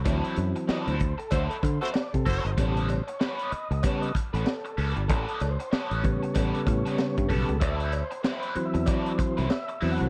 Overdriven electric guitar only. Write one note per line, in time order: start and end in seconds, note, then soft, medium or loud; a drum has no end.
0.05 0.35 F#3 medium
0.05 0.35 C4 medium
0.05 0.35 E4 medium
0.05 0.36 A4 medium
0.56 muted overdriven electric guitar stroke soft
0.68 0.81 F3 medium
0.68 0.81 B3 medium
0.68 0.81 D#4 medium
0.68 0.82 G#4 medium
0.81 0.98 F#3 medium
0.81 0.98 C4 medium
0.81 0.98 E4 medium
0.81 0.99 A4 medium
1.00 muted overdriven electric guitar stroke soft
1.18 muted overdriven electric guitar stroke medium
1.31 1.55 F#3 medium
1.31 1.55 C4 medium
1.31 1.55 E4 medium
1.31 1.55 A4 loud
1.63 muted overdriven electric guitar stroke soft
1.81 1.93 F#3 medium
1.81 1.93 C4 medium
1.81 1.94 E4 medium
1.81 1.94 A4 medium
1.94 muted overdriven electric guitar stroke soft
2.26 2.46 F#3 medium
2.26 2.45 C4 medium
2.26 2.44 E4 medium
2.26 2.44 A4 medium
2.45 muted overdriven electric guitar stroke soft
2.57 2.87 G3 medium
2.57 2.87 B3 medium
2.57 2.87 C#4 loud
2.57 2.88 A4 loud
3.08 muted overdriven electric guitar stroke soft
3.20 3.50 G3 medium
3.20 3.50 B3 medium
3.20 3.50 C#4 medium
3.20 3.51 B4 medium
3.52 muted overdriven electric guitar stroke soft
3.71 muted overdriven electric guitar stroke soft
3.83 4.07 G3 medium
3.83 4.07 B3 medium
3.83 4.07 C#4 medium
3.83 4.08 A4 medium
4.15 muted overdriven electric guitar stroke soft
4.34 4.45 G3 medium
4.34 4.45 B3 medium
4.34 4.46 C#4 medium
4.34 4.47 B4 medium
4.46 muted overdriven electric guitar stroke soft
4.65 muted overdriven electric guitar stroke soft
4.78 5.01 G3 medium
4.78 4.97 B3 medium
4.78 4.96 C#4 loud
4.78 4.95 A4 medium
4.97 muted overdriven electric guitar stroke soft
5.09 5.39 G3 medium
5.09 5.39 B3 medium
5.09 5.39 C#4 medium
5.09 5.40 A4 medium
5.60 muted overdriven electric guitar stroke soft
5.72 6.02 G3 medium
5.72 6.02 B3 medium
5.72 6.02 C#4 medium
5.72 6.03 A4 medium
6.04 muted overdriven electric guitar stroke soft
6.23 muted overdriven electric guitar stroke soft
6.35 6.58 G3 medium
6.35 6.59 B3 loud
6.35 6.59 C#4 medium
6.35 6.59 A4 loud
6.67 muted overdriven electric guitar stroke soft
6.85 6.97 G3 medium
6.85 6.98 B3 medium
6.85 6.98 C#4 medium
6.85 6.98 A4 medium
6.98 muted overdriven electric guitar stroke soft
7.29 7.49 G3 medium
7.29 7.48 B3 medium
7.29 7.48 C#4 medium
7.29 7.47 A4 medium
7.48 muted overdriven electric guitar stroke soft
7.60 7.90 F#3 medium
7.60 7.91 C4 medium
7.60 7.91 E4 loud
7.60 7.91 A4 loud
8.11 muted overdriven electric guitar stroke medium
8.24 8.54 F#3 loud
8.24 8.54 C4 medium
8.24 8.54 E4 medium
8.24 8.55 B4 medium
8.55 muted overdriven electric guitar stroke soft
8.74 muted overdriven electric guitar stroke medium
8.86 9.10 F#3 medium
8.86 9.10 C4 medium
8.86 9.11 E4 medium
8.86 9.11 A4 loud
9.18 muted overdriven electric guitar stroke soft
9.37 9.48 F#3 medium
9.37 9.49 C4 medium
9.37 9.49 E4 medium
9.37 9.50 B4 medium
9.50 muted overdriven electric guitar stroke soft
9.68 muted overdriven electric guitar stroke medium
9.81 10.05 F#3 medium
9.81 10.00 C4 medium
9.81 9.99 E4 medium
9.81 9.99 A4 loud
10.00 muted overdriven electric guitar stroke soft